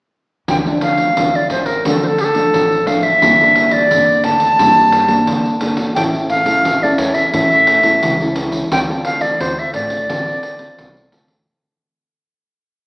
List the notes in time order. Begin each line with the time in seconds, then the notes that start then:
0.48 D2 D3 F3 A3 D4 G5, pandeiro
0.66 F3 A3 D4, pandeiro
0.81 F5, pandeiro
0.97 pandeiro
1.17 D2 A2 F3 A3 D4, pandeiro
1.35 D5, pandeiro
1.50 A1 C5, pandeiro
1.66 A#4, pandeiro
1.85 D3 F3 A3 D4 A4, pandeiro
2.03 C5, pandeiro
2.07 A4
2.18 G4, pandeiro
2.24 A4
2.35 F3 A3 D4, pandeiro
2.53 A1 A2, pandeiro
2.72 pandeiro
2.86 F3 A3 D4 F5, pandeiro
3.03 E5, pandeiro
3.22 G1 G3 A#3 D4 A4, pandeiro
3.40 A#3 D4 A4, pandeiro
3.56 pandeiro
3.71 D5, pandeiro
3.91 G1 D3 A#3 D4 A4, pandeiro
4.09 pandeiro
4.24 D2 A5, pandeiro
4.40 pandeiro
4.59 G2 G3 A#3 D4 A4, pandeiro
4.77 pandeiro
4.92 pandeiro
5.08 A#3 D4 A4, pandeiro
5.27 G1 D3, pandeiro
5.45 pandeiro
5.61 A#3 D4 A4, pandeiro
5.77 pandeiro
5.95 A1 A3 C#4 E4 A4 G5, pandeiro
6.14 pandeiro
6.30 F5, pandeiro
6.45 C#4 E4 A4, pandeiro
6.65 A1 E3, pandeiro
6.83 C#4 E4 A4 D5, pandeiro
6.98 E2 C#5, pandeiro
7.14 E5, pandeiro
7.33 A2 A3 C#4 E4 A4 E5, pandeiro
7.52 pandeiro
7.67 pandeiro
7.83 C#4 E4 A4, pandeiro
8.02 C#2 E3, pandeiro
8.21 C#4 E4 A4, pandeiro
8.36 pandeiro
8.52 pandeiro
8.71 D2 D3 C4 F4 A4 G5, pandeiro
8.89 C4 F4 A4, pandeiro
9.05 F5, pandeiro
9.21 D5, pandeiro
9.40 D2 A2 C4 F4 A4 C5, pandeiro
9.59 E5, pandeiro
9.74 A1 D5, pandeiro
9.90 pandeiro
10.09 D3 C4 F4 A4, pandeiro
10.28 pandeiro
10.43 pandeiro
10.59 C4 F4 A4, pandeiro
10.78 C2 A2, pandeiro
10.97 pandeiro
11.12 D2 C4 F4 A4, pandeiro
11.28 pandeiro